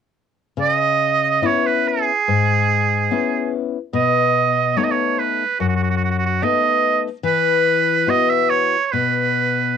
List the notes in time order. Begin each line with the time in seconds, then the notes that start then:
0.57 C#3
0.62 D#5
1.42 B3 C#4 E4 C#5
1.66 B4
1.88 G#4
2.28 G#2
3.11 B3 C#4 E4
3.93 B2 D#5
4.76 A3 B3 D#4 C#5
4.84 D#5
4.91 C#5
5.19 B4
5.60 F#2 F#4
5.69 F#4
5.76 F#4
5.83 F#4
5.91 F#4
5.97 F#4
6.05 F#4
6.11 F#4
6.19 F#4
6.26 F#4
6.42 A3 B3 D#4 D#5
7.23 E3 B4
8.07 B3 E4 F#4 D#5
8.30 E5
8.50 C#5
8.85 C#5
8.92 B2 B4